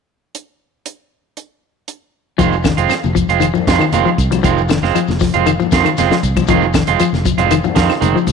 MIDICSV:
0, 0, Header, 1, 8, 480
1, 0, Start_track
1, 0, Key_signature, -4, "minor"
1, 0, Tempo, 511945
1, 323, Time_signature, 4, 2, 24, 8
1, 7801, End_track
2, 0, Start_track
2, 0, Title_t, "Clean electric guitar"
2, 0, Program_c, 0, 27
2, 2237, Note_on_c, 0, 51, 54
2, 2239, Note_on_c, 0, 56, 63
2, 2243, Note_on_c, 0, 60, 58
2, 2246, Note_on_c, 0, 65, 62
2, 2388, Note_off_c, 0, 51, 0
2, 2390, Note_off_c, 0, 56, 0
2, 2391, Note_off_c, 0, 60, 0
2, 2393, Note_off_c, 0, 65, 0
2, 2599, Note_on_c, 0, 65, 46
2, 2606, Note_on_c, 0, 60, 48
2, 2610, Note_on_c, 0, 56, 44
2, 2746, Note_off_c, 0, 65, 0
2, 2749, Note_off_c, 0, 60, 0
2, 2752, Note_off_c, 0, 56, 0
2, 3087, Note_on_c, 0, 65, 48
2, 3095, Note_on_c, 0, 60, 41
2, 3100, Note_on_c, 0, 56, 37
2, 3230, Note_off_c, 0, 65, 0
2, 3234, Note_off_c, 0, 60, 0
2, 3237, Note_off_c, 0, 56, 0
2, 3448, Note_on_c, 0, 51, 58
2, 3450, Note_on_c, 0, 56, 68
2, 3455, Note_on_c, 0, 60, 61
2, 3456, Note_on_c, 0, 65, 66
2, 3594, Note_off_c, 0, 51, 0
2, 3595, Note_off_c, 0, 56, 0
2, 3598, Note_off_c, 0, 60, 0
2, 3598, Note_off_c, 0, 65, 0
2, 3684, Note_on_c, 0, 51, 53
2, 3689, Note_on_c, 0, 56, 54
2, 3690, Note_on_c, 0, 60, 60
2, 3694, Note_on_c, 0, 65, 64
2, 3832, Note_off_c, 0, 51, 0
2, 3835, Note_off_c, 0, 56, 0
2, 3835, Note_off_c, 0, 60, 0
2, 3837, Note_off_c, 0, 65, 0
2, 4161, Note_on_c, 0, 51, 54
2, 4166, Note_on_c, 0, 56, 61
2, 4171, Note_on_c, 0, 60, 63
2, 4177, Note_on_c, 0, 65, 56
2, 4311, Note_off_c, 0, 51, 0
2, 4313, Note_off_c, 0, 56, 0
2, 4316, Note_off_c, 0, 60, 0
2, 4319, Note_off_c, 0, 65, 0
2, 4529, Note_on_c, 0, 65, 43
2, 4533, Note_on_c, 0, 60, 53
2, 4538, Note_on_c, 0, 56, 50
2, 4671, Note_off_c, 0, 65, 0
2, 4673, Note_off_c, 0, 60, 0
2, 4676, Note_off_c, 0, 56, 0
2, 5006, Note_on_c, 0, 65, 50
2, 5016, Note_on_c, 0, 60, 47
2, 5020, Note_on_c, 0, 56, 40
2, 5149, Note_off_c, 0, 65, 0
2, 5154, Note_off_c, 0, 60, 0
2, 5156, Note_off_c, 0, 56, 0
2, 5369, Note_on_c, 0, 51, 62
2, 5375, Note_on_c, 0, 56, 51
2, 5376, Note_on_c, 0, 60, 66
2, 5380, Note_on_c, 0, 65, 66
2, 5515, Note_off_c, 0, 51, 0
2, 5517, Note_off_c, 0, 56, 0
2, 5518, Note_off_c, 0, 60, 0
2, 5520, Note_off_c, 0, 65, 0
2, 5610, Note_on_c, 0, 56, 64
2, 5614, Note_on_c, 0, 60, 66
2, 5616, Note_on_c, 0, 65, 66
2, 5755, Note_off_c, 0, 56, 0
2, 5757, Note_off_c, 0, 60, 0
2, 5758, Note_off_c, 0, 65, 0
2, 6085, Note_on_c, 0, 51, 63
2, 6092, Note_on_c, 0, 56, 67
2, 6092, Note_on_c, 0, 60, 60
2, 6095, Note_on_c, 0, 65, 61
2, 6232, Note_off_c, 0, 51, 0
2, 6235, Note_off_c, 0, 60, 0
2, 6236, Note_off_c, 0, 56, 0
2, 6237, Note_off_c, 0, 65, 0
2, 6448, Note_on_c, 0, 65, 53
2, 6452, Note_on_c, 0, 60, 46
2, 6461, Note_on_c, 0, 56, 45
2, 6590, Note_off_c, 0, 65, 0
2, 6591, Note_off_c, 0, 60, 0
2, 6596, Note_off_c, 0, 56, 0
2, 6918, Note_on_c, 0, 65, 55
2, 6926, Note_on_c, 0, 60, 43
2, 6930, Note_on_c, 0, 56, 38
2, 7064, Note_off_c, 0, 65, 0
2, 7068, Note_off_c, 0, 60, 0
2, 7070, Note_off_c, 0, 56, 0
2, 7270, Note_on_c, 0, 51, 70
2, 7275, Note_on_c, 0, 56, 60
2, 7278, Note_on_c, 0, 60, 71
2, 7285, Note_on_c, 0, 65, 65
2, 7423, Note_off_c, 0, 51, 0
2, 7426, Note_off_c, 0, 56, 0
2, 7427, Note_off_c, 0, 60, 0
2, 7431, Note_off_c, 0, 65, 0
2, 7508, Note_on_c, 0, 51, 56
2, 7512, Note_on_c, 0, 56, 61
2, 7514, Note_on_c, 0, 60, 55
2, 7662, Note_off_c, 0, 51, 0
2, 7664, Note_off_c, 0, 56, 0
2, 7665, Note_off_c, 0, 60, 0
2, 7801, End_track
3, 0, Start_track
3, 0, Title_t, "Clean electric guitar"
3, 0, Program_c, 1, 27
3, 2234, Note_on_c, 1, 53, 82
3, 2360, Note_off_c, 1, 53, 0
3, 2477, Note_on_c, 1, 51, 67
3, 2603, Note_off_c, 1, 51, 0
3, 2953, Note_on_c, 1, 53, 71
3, 3080, Note_off_c, 1, 53, 0
3, 3189, Note_on_c, 1, 51, 69
3, 3257, Note_off_c, 1, 51, 0
3, 3316, Note_on_c, 1, 53, 58
3, 3443, Note_off_c, 1, 53, 0
3, 3556, Note_on_c, 1, 51, 69
3, 3683, Note_off_c, 1, 51, 0
3, 3801, Note_on_c, 1, 53, 58
3, 3927, Note_off_c, 1, 53, 0
3, 4042, Note_on_c, 1, 53, 59
3, 4104, Note_off_c, 1, 53, 0
3, 4155, Note_on_c, 1, 53, 89
3, 4281, Note_off_c, 1, 53, 0
3, 4403, Note_on_c, 1, 51, 68
3, 4527, Note_off_c, 1, 51, 0
3, 4643, Note_on_c, 1, 53, 65
3, 4768, Note_off_c, 1, 53, 0
3, 4885, Note_on_c, 1, 53, 63
3, 5009, Note_off_c, 1, 53, 0
3, 5122, Note_on_c, 1, 51, 78
3, 5187, Note_off_c, 1, 51, 0
3, 5247, Note_on_c, 1, 53, 61
3, 5371, Note_off_c, 1, 53, 0
3, 5482, Note_on_c, 1, 51, 62
3, 5607, Note_off_c, 1, 51, 0
3, 5732, Note_on_c, 1, 53, 64
3, 5854, Note_off_c, 1, 53, 0
3, 5970, Note_on_c, 1, 53, 65
3, 6029, Note_off_c, 1, 53, 0
3, 6081, Note_on_c, 1, 53, 95
3, 6205, Note_off_c, 1, 53, 0
3, 6322, Note_on_c, 1, 51, 65
3, 6446, Note_off_c, 1, 51, 0
3, 6564, Note_on_c, 1, 53, 70
3, 6687, Note_off_c, 1, 53, 0
3, 6805, Note_on_c, 1, 53, 60
3, 6928, Note_off_c, 1, 53, 0
3, 7043, Note_on_c, 1, 51, 79
3, 7106, Note_off_c, 1, 51, 0
3, 7166, Note_on_c, 1, 53, 61
3, 7289, Note_off_c, 1, 53, 0
3, 7647, Note_on_c, 1, 53, 64
3, 7770, Note_off_c, 1, 53, 0
3, 7801, End_track
4, 0, Start_track
4, 0, Title_t, "Fingered electric bass"
4, 0, Program_c, 2, 33
4, 2243, Note_on_c, 2, 29, 90
4, 2563, Note_off_c, 2, 29, 0
4, 2602, Note_on_c, 2, 29, 76
4, 2708, Note_off_c, 2, 29, 0
4, 2850, Note_on_c, 2, 29, 74
4, 3061, Note_off_c, 2, 29, 0
4, 3080, Note_on_c, 2, 29, 64
4, 3295, Note_off_c, 2, 29, 0
4, 3446, Note_on_c, 2, 41, 81
4, 3555, Note_off_c, 2, 41, 0
4, 3676, Note_on_c, 2, 29, 73
4, 3789, Note_off_c, 2, 29, 0
4, 3921, Note_on_c, 2, 36, 90
4, 4134, Note_off_c, 2, 36, 0
4, 4164, Note_on_c, 2, 29, 104
4, 4484, Note_off_c, 2, 29, 0
4, 4523, Note_on_c, 2, 29, 79
4, 4629, Note_off_c, 2, 29, 0
4, 4765, Note_on_c, 2, 29, 75
4, 4978, Note_off_c, 2, 29, 0
4, 5016, Note_on_c, 2, 29, 66
4, 5224, Note_off_c, 2, 29, 0
4, 5365, Note_on_c, 2, 41, 84
4, 5474, Note_off_c, 2, 41, 0
4, 5615, Note_on_c, 2, 29, 84
4, 5719, Note_off_c, 2, 29, 0
4, 5846, Note_on_c, 2, 36, 76
4, 6056, Note_off_c, 2, 36, 0
4, 6083, Note_on_c, 2, 29, 98
4, 6402, Note_off_c, 2, 29, 0
4, 6451, Note_on_c, 2, 29, 76
4, 6552, Note_off_c, 2, 29, 0
4, 6683, Note_on_c, 2, 29, 78
4, 6895, Note_off_c, 2, 29, 0
4, 6916, Note_on_c, 2, 29, 67
4, 7131, Note_off_c, 2, 29, 0
4, 7283, Note_on_c, 2, 41, 86
4, 7391, Note_off_c, 2, 41, 0
4, 7514, Note_on_c, 2, 29, 88
4, 7626, Note_off_c, 2, 29, 0
4, 7759, Note_on_c, 2, 36, 81
4, 7801, Note_off_c, 2, 36, 0
4, 7801, End_track
5, 0, Start_track
5, 0, Title_t, "Muted clean electric guitar strokes"
5, 2715, Note_on_c, 9, 29, 67
5, 2809, Note_off_c, 9, 29, 0
5, 7405, Note_on_c, 9, 29, 60
5, 7499, Note_off_c, 9, 29, 0
5, 7520, Note_on_c, 9, 29, 62
5, 7614, Note_off_c, 9, 29, 0
5, 7801, End_track
6, 0, Start_track
6, 0, Title_t, "Muted fingered electric bass strokes"
6, 6568, Note_on_c, 9, 29, 34
6, 6662, Note_off_c, 9, 29, 0
6, 7801, End_track
7, 0, Start_track
7, 0, Title_t, "Shekere"
7, 2248, Note_on_c, 9, 82, 79
7, 2341, Note_off_c, 9, 82, 0
7, 2366, Note_on_c, 9, 82, 25
7, 2460, Note_off_c, 9, 82, 0
7, 2476, Note_on_c, 9, 82, 64
7, 2570, Note_off_c, 9, 82, 0
7, 2605, Note_on_c, 9, 82, 23
7, 2699, Note_off_c, 9, 82, 0
7, 2711, Note_on_c, 9, 82, 78
7, 2804, Note_off_c, 9, 82, 0
7, 2845, Note_on_c, 9, 82, 23
7, 2939, Note_off_c, 9, 82, 0
7, 2961, Note_on_c, 9, 82, 62
7, 3055, Note_off_c, 9, 82, 0
7, 3082, Note_on_c, 9, 82, 28
7, 3176, Note_off_c, 9, 82, 0
7, 3193, Note_on_c, 9, 82, 82
7, 3287, Note_off_c, 9, 82, 0
7, 3324, Note_on_c, 9, 82, 22
7, 3418, Note_off_c, 9, 82, 0
7, 3449, Note_on_c, 9, 82, 62
7, 3543, Note_off_c, 9, 82, 0
7, 3563, Note_on_c, 9, 82, 30
7, 3657, Note_off_c, 9, 82, 0
7, 3684, Note_on_c, 9, 82, 84
7, 3778, Note_off_c, 9, 82, 0
7, 3812, Note_on_c, 9, 82, 24
7, 3905, Note_off_c, 9, 82, 0
7, 3931, Note_on_c, 9, 82, 56
7, 4025, Note_off_c, 9, 82, 0
7, 4054, Note_on_c, 9, 82, 25
7, 4147, Note_off_c, 9, 82, 0
7, 4163, Note_on_c, 9, 82, 77
7, 4257, Note_off_c, 9, 82, 0
7, 4289, Note_on_c, 9, 82, 25
7, 4383, Note_off_c, 9, 82, 0
7, 4397, Note_on_c, 9, 82, 57
7, 4491, Note_off_c, 9, 82, 0
7, 4523, Note_on_c, 9, 82, 21
7, 4617, Note_off_c, 9, 82, 0
7, 4646, Note_on_c, 9, 82, 79
7, 4740, Note_off_c, 9, 82, 0
7, 4758, Note_on_c, 9, 82, 23
7, 4852, Note_off_c, 9, 82, 0
7, 4872, Note_on_c, 9, 82, 66
7, 4966, Note_off_c, 9, 82, 0
7, 5010, Note_on_c, 9, 82, 24
7, 5104, Note_off_c, 9, 82, 0
7, 5121, Note_on_c, 9, 82, 74
7, 5214, Note_off_c, 9, 82, 0
7, 5252, Note_on_c, 9, 82, 27
7, 5346, Note_off_c, 9, 82, 0
7, 5361, Note_on_c, 9, 82, 57
7, 5455, Note_off_c, 9, 82, 0
7, 5487, Note_on_c, 9, 82, 29
7, 5581, Note_off_c, 9, 82, 0
7, 5602, Note_on_c, 9, 82, 87
7, 5695, Note_off_c, 9, 82, 0
7, 5728, Note_on_c, 9, 82, 24
7, 5822, Note_off_c, 9, 82, 0
7, 5848, Note_on_c, 9, 82, 62
7, 5942, Note_off_c, 9, 82, 0
7, 5974, Note_on_c, 9, 82, 25
7, 6067, Note_off_c, 9, 82, 0
7, 6072, Note_on_c, 9, 82, 90
7, 6165, Note_off_c, 9, 82, 0
7, 6204, Note_on_c, 9, 82, 24
7, 6297, Note_off_c, 9, 82, 0
7, 6316, Note_on_c, 9, 82, 58
7, 6410, Note_off_c, 9, 82, 0
7, 6445, Note_on_c, 9, 82, 26
7, 6538, Note_off_c, 9, 82, 0
7, 6564, Note_on_c, 9, 82, 78
7, 6658, Note_off_c, 9, 82, 0
7, 6694, Note_on_c, 9, 82, 26
7, 6788, Note_off_c, 9, 82, 0
7, 6801, Note_on_c, 9, 82, 67
7, 6895, Note_off_c, 9, 82, 0
7, 6930, Note_on_c, 9, 82, 25
7, 7024, Note_off_c, 9, 82, 0
7, 7040, Note_on_c, 9, 82, 72
7, 7134, Note_off_c, 9, 82, 0
7, 7160, Note_on_c, 9, 82, 26
7, 7254, Note_off_c, 9, 82, 0
7, 7285, Note_on_c, 9, 82, 61
7, 7378, Note_off_c, 9, 82, 0
7, 7412, Note_on_c, 9, 82, 33
7, 7506, Note_off_c, 9, 82, 0
7, 7530, Note_on_c, 9, 82, 91
7, 7624, Note_off_c, 9, 82, 0
7, 7659, Note_on_c, 9, 82, 24
7, 7753, Note_off_c, 9, 82, 0
7, 7763, Note_on_c, 9, 82, 59
7, 7801, Note_off_c, 9, 82, 0
7, 7801, End_track
8, 0, Start_track
8, 0, Title_t, "Drums"
8, 326, Note_on_c, 9, 42, 42
8, 420, Note_off_c, 9, 42, 0
8, 804, Note_on_c, 9, 42, 46
8, 897, Note_off_c, 9, 42, 0
8, 1284, Note_on_c, 9, 42, 38
8, 1378, Note_off_c, 9, 42, 0
8, 1762, Note_on_c, 9, 42, 42
8, 1856, Note_off_c, 9, 42, 0
8, 2240, Note_on_c, 9, 36, 81
8, 2243, Note_on_c, 9, 42, 63
8, 2254, Note_on_c, 9, 63, 26
8, 2254, Note_on_c, 9, 64, 65
8, 2334, Note_off_c, 9, 36, 0
8, 2336, Note_off_c, 9, 42, 0
8, 2347, Note_off_c, 9, 63, 0
8, 2347, Note_off_c, 9, 64, 0
8, 2481, Note_on_c, 9, 36, 57
8, 2484, Note_on_c, 9, 42, 50
8, 2487, Note_on_c, 9, 75, 56
8, 2490, Note_on_c, 9, 38, 67
8, 2575, Note_off_c, 9, 36, 0
8, 2577, Note_off_c, 9, 42, 0
8, 2581, Note_off_c, 9, 75, 0
8, 2584, Note_off_c, 9, 38, 0
8, 2605, Note_on_c, 9, 42, 47
8, 2699, Note_off_c, 9, 42, 0
8, 2727, Note_on_c, 9, 75, 60
8, 2729, Note_on_c, 9, 42, 65
8, 2734, Note_on_c, 9, 63, 30
8, 2736, Note_on_c, 9, 38, 29
8, 2821, Note_off_c, 9, 75, 0
8, 2823, Note_off_c, 9, 42, 0
8, 2828, Note_off_c, 9, 63, 0
8, 2829, Note_off_c, 9, 38, 0
8, 2849, Note_on_c, 9, 63, 73
8, 2943, Note_off_c, 9, 63, 0
8, 2964, Note_on_c, 9, 36, 61
8, 2971, Note_on_c, 9, 42, 44
8, 3058, Note_off_c, 9, 36, 0
8, 3065, Note_off_c, 9, 42, 0
8, 3092, Note_on_c, 9, 42, 48
8, 3185, Note_off_c, 9, 42, 0
8, 3208, Note_on_c, 9, 42, 59
8, 3211, Note_on_c, 9, 75, 57
8, 3217, Note_on_c, 9, 63, 28
8, 3302, Note_off_c, 9, 42, 0
8, 3305, Note_off_c, 9, 75, 0
8, 3311, Note_off_c, 9, 63, 0
8, 3330, Note_on_c, 9, 64, 74
8, 3424, Note_off_c, 9, 64, 0
8, 3444, Note_on_c, 9, 36, 70
8, 3447, Note_on_c, 9, 63, 78
8, 3449, Note_on_c, 9, 42, 54
8, 3456, Note_on_c, 9, 38, 71
8, 3538, Note_off_c, 9, 36, 0
8, 3541, Note_off_c, 9, 63, 0
8, 3543, Note_off_c, 9, 42, 0
8, 3549, Note_off_c, 9, 38, 0
8, 3575, Note_on_c, 9, 75, 61
8, 3668, Note_off_c, 9, 75, 0
8, 3681, Note_on_c, 9, 42, 65
8, 3692, Note_on_c, 9, 63, 63
8, 3775, Note_off_c, 9, 42, 0
8, 3786, Note_off_c, 9, 63, 0
8, 3923, Note_on_c, 9, 36, 57
8, 3926, Note_on_c, 9, 42, 42
8, 4016, Note_off_c, 9, 36, 0
8, 4020, Note_off_c, 9, 42, 0
8, 4049, Note_on_c, 9, 42, 49
8, 4052, Note_on_c, 9, 63, 69
8, 4058, Note_on_c, 9, 75, 49
8, 4143, Note_off_c, 9, 42, 0
8, 4146, Note_off_c, 9, 63, 0
8, 4152, Note_off_c, 9, 75, 0
8, 4161, Note_on_c, 9, 63, 28
8, 4161, Note_on_c, 9, 64, 68
8, 4167, Note_on_c, 9, 36, 88
8, 4168, Note_on_c, 9, 42, 66
8, 4255, Note_off_c, 9, 63, 0
8, 4255, Note_off_c, 9, 64, 0
8, 4261, Note_off_c, 9, 36, 0
8, 4262, Note_off_c, 9, 42, 0
8, 4411, Note_on_c, 9, 42, 47
8, 4411, Note_on_c, 9, 75, 57
8, 4417, Note_on_c, 9, 38, 65
8, 4504, Note_off_c, 9, 42, 0
8, 4505, Note_off_c, 9, 75, 0
8, 4511, Note_off_c, 9, 38, 0
8, 4540, Note_on_c, 9, 38, 26
8, 4634, Note_off_c, 9, 38, 0
8, 4644, Note_on_c, 9, 63, 29
8, 4647, Note_on_c, 9, 75, 59
8, 4648, Note_on_c, 9, 42, 58
8, 4738, Note_off_c, 9, 63, 0
8, 4740, Note_off_c, 9, 75, 0
8, 4742, Note_off_c, 9, 42, 0
8, 4768, Note_on_c, 9, 63, 65
8, 4782, Note_on_c, 9, 38, 23
8, 4862, Note_off_c, 9, 63, 0
8, 4876, Note_off_c, 9, 38, 0
8, 4886, Note_on_c, 9, 36, 59
8, 4891, Note_on_c, 9, 46, 54
8, 4898, Note_on_c, 9, 38, 25
8, 4980, Note_off_c, 9, 36, 0
8, 4985, Note_off_c, 9, 46, 0
8, 4991, Note_off_c, 9, 38, 0
8, 5007, Note_on_c, 9, 42, 50
8, 5012, Note_on_c, 9, 64, 64
8, 5100, Note_off_c, 9, 42, 0
8, 5106, Note_off_c, 9, 64, 0
8, 5125, Note_on_c, 9, 63, 31
8, 5126, Note_on_c, 9, 42, 55
8, 5132, Note_on_c, 9, 75, 61
8, 5219, Note_off_c, 9, 63, 0
8, 5220, Note_off_c, 9, 42, 0
8, 5226, Note_off_c, 9, 75, 0
8, 5251, Note_on_c, 9, 64, 72
8, 5344, Note_off_c, 9, 64, 0
8, 5365, Note_on_c, 9, 36, 77
8, 5365, Note_on_c, 9, 42, 50
8, 5371, Note_on_c, 9, 38, 70
8, 5372, Note_on_c, 9, 63, 84
8, 5458, Note_off_c, 9, 42, 0
8, 5459, Note_off_c, 9, 36, 0
8, 5465, Note_off_c, 9, 38, 0
8, 5466, Note_off_c, 9, 63, 0
8, 5493, Note_on_c, 9, 42, 38
8, 5493, Note_on_c, 9, 75, 55
8, 5587, Note_off_c, 9, 42, 0
8, 5587, Note_off_c, 9, 75, 0
8, 5608, Note_on_c, 9, 42, 59
8, 5609, Note_on_c, 9, 63, 63
8, 5614, Note_on_c, 9, 38, 29
8, 5701, Note_off_c, 9, 42, 0
8, 5703, Note_off_c, 9, 63, 0
8, 5708, Note_off_c, 9, 38, 0
8, 5734, Note_on_c, 9, 38, 50
8, 5828, Note_off_c, 9, 38, 0
8, 5844, Note_on_c, 9, 36, 56
8, 5846, Note_on_c, 9, 42, 42
8, 5938, Note_off_c, 9, 36, 0
8, 5940, Note_off_c, 9, 42, 0
8, 5967, Note_on_c, 9, 36, 51
8, 5969, Note_on_c, 9, 42, 43
8, 5971, Note_on_c, 9, 75, 55
8, 5975, Note_on_c, 9, 63, 67
8, 6061, Note_off_c, 9, 36, 0
8, 6063, Note_off_c, 9, 42, 0
8, 6064, Note_off_c, 9, 75, 0
8, 6069, Note_off_c, 9, 63, 0
8, 6081, Note_on_c, 9, 42, 68
8, 6083, Note_on_c, 9, 36, 84
8, 6090, Note_on_c, 9, 63, 30
8, 6090, Note_on_c, 9, 64, 68
8, 6174, Note_off_c, 9, 42, 0
8, 6177, Note_off_c, 9, 36, 0
8, 6184, Note_off_c, 9, 63, 0
8, 6184, Note_off_c, 9, 64, 0
8, 6321, Note_on_c, 9, 36, 61
8, 6322, Note_on_c, 9, 42, 49
8, 6328, Note_on_c, 9, 38, 66
8, 6331, Note_on_c, 9, 75, 64
8, 6415, Note_off_c, 9, 36, 0
8, 6416, Note_off_c, 9, 42, 0
8, 6422, Note_off_c, 9, 38, 0
8, 6425, Note_off_c, 9, 75, 0
8, 6443, Note_on_c, 9, 42, 51
8, 6536, Note_off_c, 9, 42, 0
8, 6560, Note_on_c, 9, 42, 61
8, 6574, Note_on_c, 9, 63, 29
8, 6576, Note_on_c, 9, 75, 54
8, 6654, Note_off_c, 9, 42, 0
8, 6667, Note_off_c, 9, 63, 0
8, 6669, Note_off_c, 9, 75, 0
8, 6693, Note_on_c, 9, 63, 66
8, 6694, Note_on_c, 9, 38, 25
8, 6786, Note_off_c, 9, 63, 0
8, 6788, Note_off_c, 9, 38, 0
8, 6802, Note_on_c, 9, 36, 71
8, 6809, Note_on_c, 9, 42, 45
8, 6896, Note_off_c, 9, 36, 0
8, 6903, Note_off_c, 9, 42, 0
8, 6923, Note_on_c, 9, 42, 47
8, 6929, Note_on_c, 9, 64, 73
8, 7017, Note_off_c, 9, 42, 0
8, 7022, Note_off_c, 9, 64, 0
8, 7040, Note_on_c, 9, 42, 65
8, 7043, Note_on_c, 9, 63, 28
8, 7052, Note_on_c, 9, 75, 65
8, 7133, Note_off_c, 9, 42, 0
8, 7137, Note_off_c, 9, 63, 0
8, 7146, Note_off_c, 9, 75, 0
8, 7171, Note_on_c, 9, 64, 82
8, 7265, Note_off_c, 9, 64, 0
8, 7272, Note_on_c, 9, 63, 86
8, 7278, Note_on_c, 9, 42, 58
8, 7279, Note_on_c, 9, 36, 75
8, 7285, Note_on_c, 9, 38, 75
8, 7366, Note_off_c, 9, 63, 0
8, 7372, Note_off_c, 9, 42, 0
8, 7373, Note_off_c, 9, 36, 0
8, 7378, Note_off_c, 9, 38, 0
8, 7405, Note_on_c, 9, 75, 61
8, 7411, Note_on_c, 9, 38, 24
8, 7499, Note_off_c, 9, 75, 0
8, 7505, Note_off_c, 9, 38, 0
8, 7519, Note_on_c, 9, 63, 72
8, 7520, Note_on_c, 9, 42, 67
8, 7613, Note_off_c, 9, 63, 0
8, 7614, Note_off_c, 9, 42, 0
8, 7751, Note_on_c, 9, 63, 74
8, 7756, Note_on_c, 9, 36, 56
8, 7760, Note_on_c, 9, 42, 47
8, 7801, Note_off_c, 9, 36, 0
8, 7801, Note_off_c, 9, 42, 0
8, 7801, Note_off_c, 9, 63, 0
8, 7801, End_track
0, 0, End_of_file